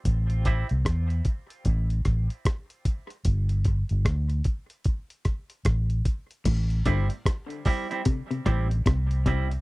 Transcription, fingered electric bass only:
X:1
M:4/4
L:1/16
Q:"Swing 16ths" 1/4=75
K:Am
V:1 name="Fingered electric bass" clef=bass
A,,,3 C,, E,,2 z2 A,,,2 A,,, z4 z | G,,,3 G,,, D,,2 z6 A,,,2 z2 | A,,,2 G,,, z6 z A,,,2 C,,4 |]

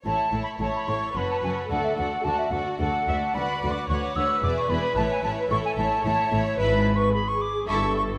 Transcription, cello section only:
X:1
M:3/4
L:1/8
Q:1/4=110
K:A
V:1 name="Cello section" clef=bass
A,, A,, A,, A,, F,, F,, | D,, D,, D,, D,, D,, D,, | D,, D,, D,, D,, E,, E,, | A,, A,, A,, A,, A,, A,, |
G,,2 z2 =G,,2 |]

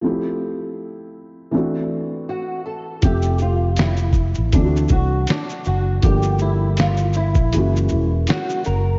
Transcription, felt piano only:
X:1
M:4/4
L:1/8
Q:"Swing 16ths" 1/4=80
K:F
V:1 name="Felt piano"
[F,A,CEG]4 [E,A,CD^F]4 | [F,A,CGe]4 [E,A,CDF^F]4 | [F,A,B,DG]4 [_F,_A,B,_D_G]4 |]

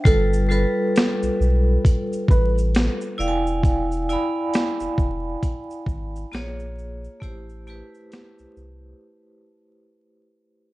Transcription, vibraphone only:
X:1
M:4/4
L:1/8
Q:"Swing 16ths" 1/4=67
K:Am
V:1 name="Vibraphone"
[G,FAB] [G,FAB]4 z2 [Edfg^g]- | [Edfg^g] [Edfb]4 z [_B,F_A_d]2 | [A,EGc] [A,EGB]4 z3 |]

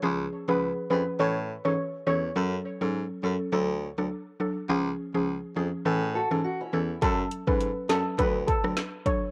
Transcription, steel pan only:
X:1
M:4/4
L:1/16
Q:"Swing 16ths" 1/4=103
K:F#m
V:1 name="Steel pan"
z3 B z2 B z c z2 c z2 c z | z16 | z16 | A2 z B2 z A2 B z A z3 c z |]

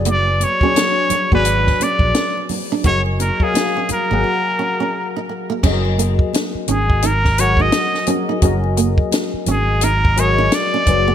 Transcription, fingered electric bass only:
X:1
M:4/4
L:1/16
Q:"Swing 16ths" 1/4=86
K:F#
V:1 name="Fingered electric bass" clef=bass
F,,,3 z4 G,,,3 z A,,, z4 | F,,,3 z4 G,,, z8 | F,,,4 z2 G,,,6 z4 | F,,,4 z2 G,,,6 z2 F,,,2 |]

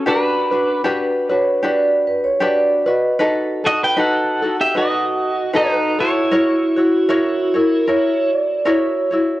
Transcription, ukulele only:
X:1
M:4/4
L:1/8
Q:"Swing" 1/4=77
K:Glyd
V:1 name="Ukulele"
[DFGB] [DFB] [DFGB] [DFB] [DFGB]2 [DFGB] [FB] | [^DFAB] [DFA] [DFAB] [DFA] [DFAB]2 [DFAB] [FA] | [EF^Ac] [EFc] [EFAc] [EFc] [EFA]2 [EFAc] [EFc] |]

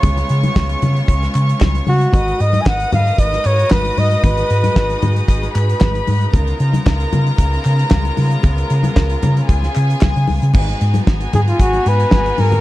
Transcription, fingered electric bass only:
X:1
M:4/4
L:1/16
Q:1/4=114
K:G#dor
V:1 name="Fingered electric bass" clef=bass
C,,2 C,2 C,,2 C,2 C,,2 C,2 C,,2 C,2 | G,,,2 G,,2 G,,,2 G,,2 G,,,2 G,,2 G,,,2 G,,2 | G,,,2 G,,2 G,,,2 G,,2 G,,,2 G,,2 G,,,2 G,,2 | C,,2 C,2 C,,2 C,2 C,,2 C,2 C,,2 C,2 |
C,,2 C,2 C,,2 C,2 C,,2 C,2 C,, C, C,, C, | G,,,2 G,,2 G,,,2 G,,2 G,,,2 G,,2 G,,,2 G,,2 |]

